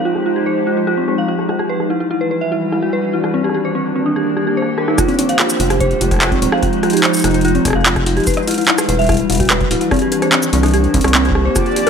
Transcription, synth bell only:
0.05 F4
0.26 F4
0.36 G4
0.46 C5
0.67 F4
0.77 F4
0.87 F4
0.98 C4
1.08 C4
1.18 F5
1.28 F4
1.49 F4
1.59 G4
1.69 B4
1.90 E4
2.00 E4
2.11 E4
2.21 B4
2.31 B4
2.41 E5
2.52 E4
2.72 E4
2.83 F#4
2.93 B4
3.13 E4
3.24 E4
3.34 C4
3.44 G4
3.54 G4
3.65 C5
3.75 C4
3.96 C4
4.06 D4
4.16 G4
4.37 G4
4.47 G4
4.57 C5
4.78 A#4
4.88 D#4
4.98 F4
5.08 C4
5.19 C4
5.29 F5
5.39 F4
5.60 F4
5.70 G4
5.80 C5
6.01 F4
6.11 F4
6.22 F4
6.32 C4
6.42 C4
6.53 F5
6.63 F4
6.83 F4
6.94 G4
7.04 C5
7.24 F4
7.34 F4
7.45 F4
7.55 C4
7.65 C4
7.75 F5
7.86 F4
8.06 F4
8.17 G4
8.27 B4
8.48 E4
8.58 E4
8.68 E4
8.78 B4
8.89 B4
8.99 E5
9.09 E4
9.30 E4
9.40 F#4
9.50 B4
9.71 E4
9.81 E4
9.91 C4
10.02 G4
10.12 G4
10.22 C5
10.33 C4
10.53 C4
10.63 D4
10.74 G4
10.94 C4
11.04 C4
11.15 C4
11.25 G4
11.35 G4
11.45 C5
11.56 F4
11.76 G4
11.87 G4

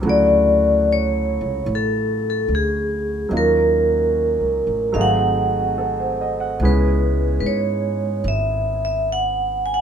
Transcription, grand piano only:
0.01 C#3 F#3 A3 E4
0.07 F#4
3.29 F#3 A#3 C#4 D#4
3.33 F4
4.92 F#3 A3 C4 D#4
4.97 G#4
5.78 A4
6.00 C5
6.21 D#5
6.40 F#5
6.62 G#3 B3 C#4 E4 G#4

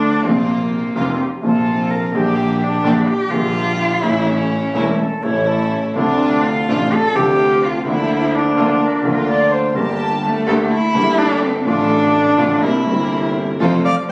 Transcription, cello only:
Already playing: D4
0.26 C4
0.50 A#3
2.61 D4
3.08 G4
3.31 F4
4.03 E4
4.27 C#4
5.95 D4
6.44 F4
6.93 A4
7.16 G4
7.65 F4
7.87 E4
8.36 D4
10.23 A3
10.71 E4
11.18 D4
11.42 C4
11.65 D4
12.62 E4
13.85 F3
14.08 G3

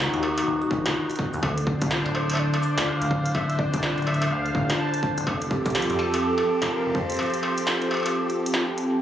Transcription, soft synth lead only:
2.15 C5
2.34 E5
2.39 D5
2.87 F5
3.35 E5
3.59 D5
4.07 E5
4.31 F5
4.79 A5
5.99 A4
6.71 A#4
6.95 C5

